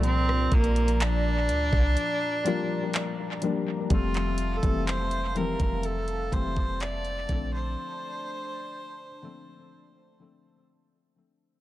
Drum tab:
HH |x---xxxxx---x---x---x---x---x---|x-x-x-x-x-x-x-x-x-x-x---x-x-x---|--------------------------------|
CP |--------x---------------x-------|--x-----x---------------x-------|--------------------------------|
SD |--r-----------------------------|--------------------------------|--------------------------------|
BD |----o---------o-----------------|o-----o-------o-----o-o-----o---|--------------------------------|